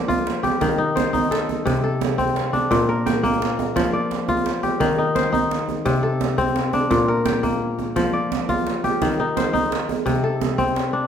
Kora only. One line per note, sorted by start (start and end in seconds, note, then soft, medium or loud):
0.00 0.66 F3 medium
0.00 0.97 A#3 medium
0.00 0.67 D5 medium
0.08 1.60 F4 medium
0.43 1.84 G4 medium
0.61 1.71 D#3 medium
0.78 1.13 D#4 medium
0.96 2.14 C5 medium
1.13 2.59 D#4 medium
1.31 1.83 A4 medium
1.65 2.76 C3 medium
1.84 2.77 A4 medium
2.18 3.98 C4 medium
2.53 4.21 D4 medium
2.71 3.81 A#2 medium
2.89 4.16 A#4 medium
3.06 3.99 G5 medium
3.23 5.16 A#3 medium
3.76 4.86 F3 medium
3.93 4.86 D5 medium
4.29 5.80 F4 medium
4.63 6.04 G4 medium
4.80 5.91 D#3 medium
4.98 5.32 D#4 medium
5.15 6.34 C5 medium
5.33 6.79 D#4 medium
5.85 6.96 C3 medium
6.03 6.96 A4 medium
6.38 8.18 C4 medium
6.73 8.41 D4 medium
6.90 8.01 A#2 medium
7.08 8.36 A#4 medium
7.25 8.18 G5 medium
7.43 9.36 A#3 medium
7.96 9.06 F3 medium
8.13 9.08 D5 medium
8.49 10.00 F4 medium
8.84 10.25 G4 medium
9.02 10.11 D#3 medium
9.20 9.53 D#4 medium
9.37 10.55 C5 medium
9.53 10.99 D#4 medium
10.06 11.07 C3 medium
10.24 11.07 A4 medium
10.58 11.07 C4 medium
10.93 11.07 D4 medium